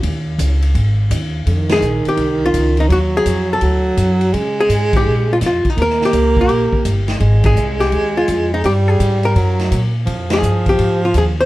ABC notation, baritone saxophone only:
X:1
M:4/4
L:1/16
Q:"Swing" 1/4=167
K:G#phr
V:1 name="Baritone saxophone" clef=bass
z16 | [K:Fm] E,16 | _G,8 ^F,8 | A,12- A, z3 |
B,12- B,2 z2 | A,16 | G,8 _G,4- G, z3 | F,16 |]